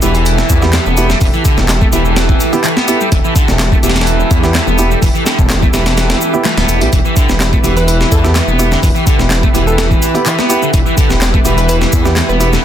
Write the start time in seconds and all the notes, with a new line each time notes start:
Already playing: E4 G4 A4
0.02 E1 E3 B3 E4 G4, closed hi-hat, shaker
0.14 E3, closed hi-hat, shaker
0.26 closed hi-hat, shaker
0.38 snare, shaker
0.49 E2, kick, closed hi-hat, shaker
0.62 B3 E4 G4, snare, shaker
0.73 E3, snare, clap, closed hi-hat, shaker
0.86 E1 B3, shaker
0.97 B3 E4 G4, closed hi-hat, shaker
1.10 G3, snare, shaker
1.21 E1 E3, kick, open hi-hat, shaker
1.33 E3, shaker
1.45 D3, kick, closed hi-hat, shaker
1.57 E1, snare, shaker
1.69 snare, clap, closed hi-hat, shaker
1.81 A3, kick, shaker
1.92 E1 E3 B3 E4 G4, closed hi-hat, shaker
2.05 E3, shaker
2.16 snare, closed hi-hat, shaker
2.29 kick, shaker
2.40 closed hi-hat, shaker
2.53 B3 E4 G4, closed hi-hat, shaker
2.64 E3, clap, closed hi-hat, shaker
2.77 B3, snare, shaker
2.88 B3 E4 G4, closed hi-hat, shaker
3.01 G3, shaker
3.12 E1 E3, kick, closed hi-hat, shaker
3.24 E3, shaker
3.36 D3, kick, closed hi-hat, shaker
3.48 E1, snare, shaker
3.59 snare, clap, closed hi-hat, shaker
3.72 A3, kick, shaker
3.83 E1 E3 B3 E4 G4, closed hi-hat, shaker
3.90 snare, closed hi-hat
3.96 E3, snare, closed hi-hat, shaker
4.01 snare, closed hi-hat
4.07 closed hi-hat, shaker
4.20 shaker
4.31 E2, kick, closed hi-hat, shaker
4.43 B3 E4 G4, snare, shaker
4.55 E3, snare, clap, closed hi-hat, shaker
4.67 E1 B3, shaker
4.78 B3 E4 G4, closed hi-hat, shaker
4.91 G3, shaker
5.02 E1 E3, kick, open hi-hat, shaker
5.15 E3, shaker
5.26 D3, snare, closed hi-hat, shaker
5.38 E1, kick, shaker
5.50 snare, clap, closed hi-hat, shaker
5.62 A3, kick, shaker
5.73 E1 E3 B3 E4 G4, snare, closed hi-hat, shaker
5.86 E3, snare, closed hi-hat, shaker
5.97 snare, closed hi-hat, shaker
6.10 snare, closed hi-hat, shaker
6.21 shaker
6.34 B3 E4 G4, shaker
6.45 E3, snare, clap, closed hi-hat, shaker
6.57 D1 B3, snare, closed hi-hat, shaker
6.68 E1, closed hi-hat, shaker
6.81 B1 G3 B3 E4 G4, closed hi-hat, shaker
6.92 E1 E3 B4, kick, closed hi-hat, shaker
7.05 E3, shaker
7.16 D3, kick, closed hi-hat, shaker
7.29 E1, snare, shaker
7.40 snare, clap, closed hi-hat, shaker
7.53 A3, kick, shaker
7.64 E1 E3 B3 E4 G4, closed hi-hat, shaker
7.77 E3 B4, closed hi-hat, shaker
7.88 B4, closed hi-hat, shaker
8.01 snare, shaker
8.12 E2 A4, kick, closed hi-hat, shaker
8.24 B3 E4 G4 A4, snare, shaker
8.35 E3, snare, clap, closed hi-hat, shaker
8.47 E1 B3, shaker
8.59 B3 E4 G4, closed hi-hat, shaker
8.71 D3, snare, shaker
8.83 E1 E3, kick, open hi-hat, shaker
8.95 E3, shaker
9.07 D3, kick, closed hi-hat, shaker
9.19 E1, snare, shaker
9.30 snare, clap, closed hi-hat, shaker
9.43 A3, kick, shaker
9.54 E1 E3 B3 E4 G4, closed hi-hat, shaker
9.67 E3 A4, shaker
9.78 A4, snare, closed hi-hat, shaker
9.91 kick, shaker
10.02 closed hi-hat, shaker
10.14 B3 E4 G4, closed hi-hat, shaker
10.26 E3, clap, closed hi-hat, shaker
10.38 B3, snare, shaker
10.49 B3 E4 G4, closed hi-hat, shaker
10.62 D3, shaker
10.74 E1 E3, kick, closed hi-hat, shaker
10.86 E3, shaker
10.97 D3, kick, closed hi-hat, shaker
11.10 E1, snare, shaker
11.21 snare, clap, closed hi-hat, shaker
11.34 A3, kick, shaker
11.45 E1 E3 B3 E4 G4, closed hi-hat, shaker
11.58 E3 B4, closed hi-hat, shaker
11.69 B4, closed hi-hat, shaker
11.81 snare, shaker
11.93 E2, kick, closed hi-hat, shaker
12.05 B3 E4 G4, snare, shaker
12.16 E3, snare, clap, closed hi-hat, shaker
12.29 E1 B3 B4, shaker
12.40 B3 E4 G4 B4, closed hi-hat, shaker
12.53 D3, snare, shaker